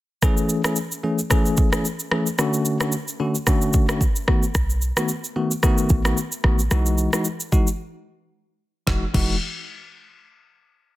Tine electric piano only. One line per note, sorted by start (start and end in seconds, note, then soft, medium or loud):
0.22 0.61 E3 medium
0.22 0.61 A3 medium
0.22 0.61 C#4 medium
0.22 0.61 G#4 loud
0.64 0.77 E3 medium
0.64 0.77 A3 medium
0.64 0.77 C#4 medium
0.64 0.77 G#4 medium
1.03 1.19 E3 medium
1.03 1.19 A3 medium
1.03 1.19 C#4 medium
1.03 1.19 G#4 medium
1.30 1.69 E3 medium
1.30 1.69 A3 medium
1.30 1.69 C#4 medium
1.30 1.69 G#4 loud
1.72 1.85 E3 medium
1.72 1.85 A3 medium
1.72 1.85 C#4 medium
1.72 1.85 G#4 medium
2.11 2.27 E3 medium
2.11 2.27 A3 medium
2.11 2.27 C#4 medium
2.11 2.27 G#4 medium
2.38 2.77 D3 medium
2.38 2.77 A3 medium
2.38 2.77 C#4 medium
2.38 2.77 F#4 loud
2.80 2.93 D3 medium
2.80 2.93 A3 medium
2.80 2.93 C#4 medium
2.80 2.94 F#4 medium
3.19 3.35 D3 medium
3.19 3.35 A3 medium
3.19 3.35 C#4 medium
3.19 3.35 F#4 medium
3.47 3.85 D3 medium
3.47 3.85 A3 medium
3.47 3.85 C#4 medium
3.47 3.85 F#4 loud
3.88 4.01 D3 medium
3.88 4.02 A3 medium
3.88 4.02 C#4 medium
3.88 4.02 F#4 medium
4.28 4.43 D#3 medium
4.28 4.43 A3 medium
4.28 4.43 B3 medium
4.28 4.43 F#4 medium
4.96 5.10 D#3 medium
4.96 5.10 A3 medium
4.96 5.10 B3 medium
4.96 5.10 F#4 medium
5.36 5.51 D#3 medium
5.36 5.51 A3 medium
5.36 5.52 B3 medium
5.36 5.52 F#4 medium
5.63 6.01 D#3 medium
5.63 6.01 A3 medium
5.63 6.01 B3 medium
5.63 6.02 F#4 loud
6.05 6.18 D#3 medium
6.05 6.18 A3 medium
6.05 6.18 B3 medium
6.05 6.18 F#4 medium
6.44 6.59 D#3 medium
6.44 6.60 A3 medium
6.44 6.60 B3 medium
6.44 6.60 F#4 medium
6.71 7.09 E3 medium
6.71 7.09 G#3 medium
6.71 7.10 D#4 medium
6.71 7.10 F#4 loud
7.13 7.26 E3 medium
7.13 7.26 G#3 medium
7.13 7.26 D#4 medium
7.13 7.26 F#4 medium
7.52 7.68 E3 medium
7.52 7.68 G#3 medium
7.52 7.68 D#4 medium
7.52 7.68 F#4 medium
8.87 9.03 E3 medium
8.87 9.03 G#3 medium
8.87 9.04 D#4 medium
8.87 9.04 F#4 medium
9.14 9.35 E3 medium
9.14 9.35 G#3 medium
9.14 9.35 D#4 medium
9.14 9.35 F#4 medium